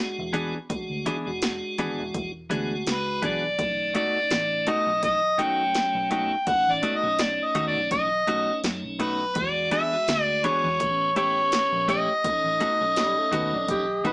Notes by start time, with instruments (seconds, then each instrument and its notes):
Already playing: fingered electric bass E1, tonewheel organ G#3 D4 F#4
0.18 fingered electric bass E1
0.33 clean electric guitar E3 B3 D4 G#4, closed hi-hat
0.70 tonewheel organ G#3 D4 F#4, muted fingered electric bass stroke, kick, closed hi-hat
0.90 fingered electric bass D2
1.06 clean electric guitar E3 B3 D4 G#4, closed hi-hat
1.26 fingered electric bass E1, tonewheel organ G#3 D4 F#4
1.42 snare, closed hi-hat
1.78 fingered electric bass G#1, clean electric guitar E3 B3 D4 G#4, closed hi-hat
1.99 fingered electric bass E1
2.14 fingered electric bass E1, kick, closed hi-hat
2.50 fingered electric bass D2, clean electric guitar E3 B3 D4 G#4, tonewheel organ G#3 D4 F#4, closed hi-hat
2.86 fingered electric bass C#2, harmonica B4, snare, closed hi-hat
3.22 fingered electric bass B1, clean electric guitar E3 B3 D4 G#4, harmonica D5, kick, closed hi-hat
3.58 fingered electric bass B1, tonewheel organ C#3 A3 D#4, kick, closed hi-hat
3.94 clean electric guitar B2 A3 D#4 F#4, harmonica D5, closed hi-hat
4.15 tonewheel organ C#3 A3 D#4
4.30 fingered electric bass A1, snare, closed hi-hat
4.67 clean electric guitar B2 A3 D#4 F#4, harmonica D#5, closed hi-hat
4.87 fingered electric bass B1
5.03 harmonica D#5, kick, closed hi-hat
5.38 clean electric guitar B2 A3 D#4 F#4, tonewheel organ F#3 A3 C#4, harmonica G5, closed hi-hat
5.75 snare, closed hi-hat
5.95 fingered electric bass B1
6.11 clean electric guitar B2 A3 D#4 F#4, harmonica G5, closed hi-hat
6.47 tonewheel organ A3 C#4 D#4, harmonica F#5, muted fingered electric bass stroke, kick, closed hi-hat
6.67 fingered electric bass A1
6.73 harmonica D5
6.82 clean electric guitar B2 A3 D#4 F#4, closed hi-hat
6.96 harmonica D#5
7.03 fingered electric bass B1, tonewheel organ A3 C#4 D#4
7.19 harmonica D5, snare, closed hi-hat
7.44 harmonica D#5
7.55 fingered electric bass D#2, clean electric guitar B2 A3 D#4 F#4, closed hi-hat
7.67 harmonica D5
7.75 fingered electric bass B1
7.91 fingered electric bass B1, harmonica D#5, kick, closed hi-hat
8.27 fingered electric bass B1, clean electric guitar B2 A3 D#4 F#4, tonewheel organ A3 C#4 D#4, closed hi-hat
8.64 fingered electric bass F#2, snare, closed hi-hat
8.84 fingered electric bass B1
8.99 clean electric guitar B2 A3 D#4 F#4, harmonica B4, closed hi-hat
9.35 fingered electric bass E2, tonewheel organ G#3 D4 F#4, harmonica D5, kick, closed hi-hat
9.71 clean electric guitar E3 B3 D4 G#4, harmonica E5, closed hi-hat
9.92 tonewheel organ G#3 D4 F#4
10.08 fingered electric bass D2, snare, closed hi-hat
10.23 harmonica D5
10.44 clean electric guitar E3 B3 D4 G#4, harmonica C#5, closed hi-hat
10.64 fingered electric bass E2
10.80 fingered electric bass A1, tonewheel organ B3 C#4 G4, kick, closed hi-hat
11.16 clean electric guitar A3 E4 G4 C#5, tonewheel organ B3 C#4 G4, harmonica C#5, closed hi-hat
11.52 snare, closed hi-hat
11.72 fingered electric bass A#1
11.88 clean electric guitar A3 E4 G4 C#5, harmonica D#5, closed hi-hat
12.24 tonewheel organ C#4 D#4 A4, muted fingered electric bass stroke, kick, closed hi-hat
12.44 fingered electric bass A1
12.60 clean electric guitar B2 A3 D#4 F#4, closed hi-hat
12.80 fingered electric bass B1, tonewheel organ C#4 D#4 A4
12.96 tenor saxophone G3, snare, closed hi-hat
13.18 tenor saxophone A3
13.32 fingered electric bass D#2, clean electric guitar B2 A3 D#4 F#4, tenor saxophone B3, closed hi-hat
13.53 fingered electric bass B1, tenor saxophone D4
13.68 fingered electric bass B1, tenor saxophone G4, kick, closed hi-hat
14.04 fingered electric bass B1, clean electric guitar B2 A3 D#4 F#4, tonewheel organ C#4 D#4 A4, tenor saxophone B4, closed hi-hat, mid tom